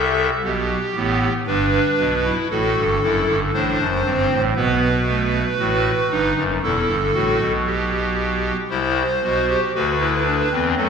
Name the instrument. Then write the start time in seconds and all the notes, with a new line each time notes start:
pipe organ
Already playing: C2 C3 A4 E5
0.44 B1 B2 G4
0.96 A1 A2 B3
1.46 G1 G2 D4 B4
1.98 B1 B2
2.25 E4
2.50 A1 A2 F#4 A4
2.76 G1 G2
3.02 F#1 F#2 E4
3.28 G1 G2
3.53 A1 A2 D4 C5
3.79 F#1 F#2
4.04 G1 G2 C4
4.31 A1 A2
4.56 B1 B2 B3 B4
5.07 A3
5.58 A1 A2 F#4
6.10 G1 G2 D#4
6.36 F#1 F#2
6.63 E1 E2 E4 A4
6.88 G1 G2
7.14 A1 A2 F#4
7.40 B1 B2
7.66 G4
8.70 C2 C3 E4 C5
9.23 B1 B2 F#4
9.49 G4
9.74 D2 D3 F#4 B4
10.00 E4
10.26 D4
10.52 E2 E3 C4
10.77 F#2 F#3 A3 A4